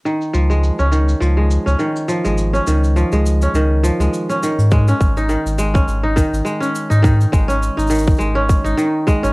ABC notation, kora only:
X:1
M:4/4
L:1/16
Q:"Swing 16ths" 1/4=103
K:Db
V:1 name="Kora" clef=bass
E,2 F, A, z D E,2 F, A, z D E,2 F, A, | z D E,2 F, A, z D E,2 F, A, z D E,2 | A, D z E E,2 A, D z E E,2 A, D z E | E,2 A, D z E E,2 A, D z E E,2 A, D |]